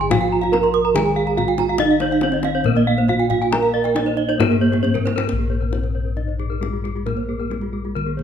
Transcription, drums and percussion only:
0.01 kendang slap soft
0.11 kendang high medium
0.11 kendang low loud
0.43 kendang slap soft
0.53 kendang high medium
0.64 kendang slap soft
0.96 kendang high medium
0.96 kendang low medium
1.06 kendang slap soft
1.38 kendang low medium
1.58 kendang high soft
1.58 kendang low soft
1.68 kendang slap soft
1.78 kendang high soft
1.78 kendang low medium
2.00 kendang high medium
2.11 kendang slap soft
2.21 kendang high medium
2.32 kendang slap soft
2.43 kendang high medium
2.64 kendang low medium
2.75 kendang slap soft
3.08 kendang low medium
3.31 kendang low medium
3.42 kendang slap soft
3.53 kendang high medium
3.53 kendang low medium
3.64 kendang slap soft
3.85 kendang slap soft
3.96 kendang high medium
4.08 kendang slap soft
4.29 kendang slap soft
4.40 kendang high medium
4.40 kendang low medium
4.52 kendang slap soft
4.73 kendang slap soft
4.84 kendang low soft
4.95 kendang low medium
5.07 kendang high medium
5.18 kendang high medium
5.29 kendang low soft
5.40 kendang slap soft
5.62 kendang slap soft
5.73 kendang high soft
5.84 kendang slap soft
6.17 kendang low soft
6.29 kendang slap soft
6.39 kendang low soft
6.52 kendang slap soft
6.63 kendang high soft
6.63 kendang low soft
6.85 kendang high soft
6.97 kendang slap soft
7.07 kendang low soft
7.17 kendang slap soft
7.40 kendang slap soft
7.51 kendang high soft
7.61 kendang slap soft
7.96 kendang low soft
8.07 kendang slap soft
8.19 kendang low soft

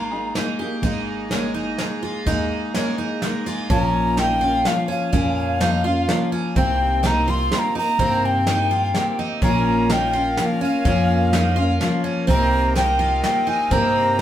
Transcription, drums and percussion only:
0.35 snare medium
0.35 ride soft
0.83 kick medium
0.83 ride soft
1.31 snare medium
1.31 ride soft
1.78 snare medium
1.78 ride soft
2.27 kick medium
2.27 ride soft
2.74 snare medium
2.74 ride soft
3.22 snare medium
3.22 ride soft
3.46 ride soft
3.70 kick medium
3.70 closed hi-hat soft
4.17 snare medium
4.17 closed hi-hat medium
4.65 snare medium
4.65 closed hi-hat medium
5.13 kick medium
5.13 closed hi-hat medium
5.61 snare medium
5.61 closed hi-hat medium
6.09 snare medium
6.09 closed hi-hat medium
6.56 kick medium
6.56 closed hi-hat medium
7.04 snare medium
7.04 closed hi-hat soft
7.52 snare medium
7.52 closed hi-hat soft
7.99 kick medium
7.99 closed hi-hat medium
8.47 snare medium
8.47 closed hi-hat medium
8.94 snare medium
8.94 closed hi-hat medium
9.41 kick loud
9.41 closed hi-hat medium
9.89 snare medium
9.89 closed hi-hat medium
10.37 snare medium
10.37 closed hi-hat medium
10.85 kick loud
10.85 closed hi-hat medium
11.33 snare medium
11.33 closed hi-hat medium
11.81 snare medium
11.81 closed hi-hat medium
12.28 kick medium
12.28 closed hi-hat medium
12.76 snare medium
12.76 closed hi-hat medium
13.24 snare medium
13.24 closed hi-hat medium
13.71 kick medium
13.71 closed hi-hat medium

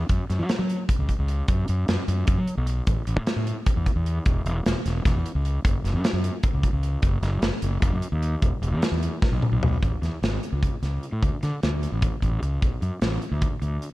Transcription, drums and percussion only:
0.09 kick loud
0.09 closed hi-hat medium
0.30 snare soft
0.30 closed hi-hat medium
0.49 snare loud
0.49 closed hi-hat medium
0.70 closed hi-hat medium
0.89 kick loud
0.89 closed hi-hat loud
1.09 kick medium
1.09 closed hi-hat medium
1.28 closed hi-hat medium
1.48 kick loud
1.48 closed hi-hat medium
1.68 closed hi-hat medium
1.88 snare loud
1.88 closed hi-hat medium
2.08 closed hi-hat medium
2.27 kick loud
2.27 closed hi-hat loud
2.47 closed hi-hat medium
2.67 closed hi-hat medium
2.87 kick loud
2.87 closed hi-hat medium
3.07 closed hi-hat medium
3.27 snare loud
3.27 closed hi-hat medium
3.47 closed hi-hat medium
3.66 kick loud
3.66 closed hi-hat medium
3.86 kick medium
3.86 closed hi-hat medium
4.06 closed hi-hat medium
4.26 kick loud
4.26 closed hi-hat medium
4.46 closed hi-hat medium
4.66 snare loud
4.66 closed hi-hat medium
4.86 snare soft
4.86 closed hi-hat medium
5.05 kick loud
5.05 snare soft
5.05 closed hi-hat medium
5.26 closed hi-hat medium
5.45 closed hi-hat medium
5.65 kick loud
5.65 closed hi-hat medium
5.85 snare soft
5.85 closed hi-hat medium
6.04 snare loud
6.04 closed hi-hat medium
6.24 closed hi-hat medium
6.43 kick loud
6.43 closed hi-hat medium
6.63 kick medium
6.63 closed hi-hat medium
6.83 closed hi-hat medium
7.02 kick loud
7.02 closed hi-hat medium
7.23 snare soft
7.23 closed hi-hat medium
7.42 snare loud
7.42 closed hi-hat medium
7.62 closed hi-hat medium
7.82 kick loud
7.82 closed hi-hat loud
8.02 closed hi-hat medium
8.22 closed hi-hat medium
8.42 kick loud
8.42 closed hi-hat medium
8.63 closed hi-hat medium
8.82 snare loud
8.82 closed hi-hat loud
9.03 closed hi-hat medium
9.22 kick loud
9.22 snare medium
9.42 mid tom medium
9.63 floor tom loud
9.83 kick loud
9.83 closed hi-hat medium
10.03 snare soft
10.03 closed hi-hat medium
10.23 snare loud
10.23 closed hi-hat medium
10.43 closed hi-hat medium
10.63 kick loud
10.63 closed hi-hat medium
10.83 snare soft
10.83 closed hi-hat medium
11.03 closed hi-hat medium
11.23 kick medium
11.23 closed hi-hat medium
11.43 snare soft
11.43 closed hi-hat medium
11.63 snare loud
11.63 closed hi-hat medium
11.83 closed hi-hat medium
12.02 kick loud
12.02 closed hi-hat medium
12.22 kick medium
12.22 closed hi-hat medium
12.43 closed hi-hat medium
12.62 kick medium
12.62 closed hi-hat medium
12.82 closed hi-hat medium
13.02 snare loud
13.02 closed hi-hat medium
13.22 closed hi-hat medium
13.41 kick loud
13.41 closed hi-hat medium
13.62 closed hi-hat medium
13.82 closed hi-hat medium

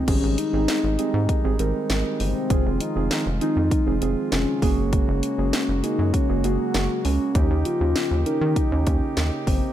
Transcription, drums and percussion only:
0.08 kick loud
0.08 closed hi-hat medium
0.08 crash loud
0.38 closed hi-hat medium
0.68 snare loud
0.68 closed hi-hat medium
0.99 closed hi-hat medium
1.29 kick medium
1.29 closed hi-hat medium
1.59 closed hi-hat medium
1.90 snare loud
1.90 closed hi-hat medium
2.20 open hi-hat medium
2.50 kick loud
2.50 closed hi-hat medium
2.80 closed hi-hat medium
3.11 snare loud
3.11 closed hi-hat medium
3.41 closed hi-hat medium
3.71 kick medium
3.71 closed hi-hat medium
4.02 closed hi-hat medium
4.32 snare loud
4.32 closed hi-hat medium
4.62 kick medium
4.62 open hi-hat medium
4.93 kick loud
4.93 closed hi-hat medium
5.23 closed hi-hat medium
5.53 snare loud
5.53 closed hi-hat medium
5.84 closed hi-hat medium
6.14 kick medium
6.14 closed hi-hat medium
6.44 closed hi-hat medium
6.74 snare loud
6.74 closed hi-hat medium
7.05 open hi-hat medium
7.35 kick loud
7.35 closed hi-hat medium
7.65 closed hi-hat medium
7.96 snare loud
7.96 closed hi-hat medium
8.26 closed hi-hat medium
8.56 kick medium
8.56 closed hi-hat medium
8.87 kick medium
8.87 closed hi-hat medium
9.17 snare loud
9.17 closed hi-hat medium
9.47 kick medium
9.47 open hi-hat medium

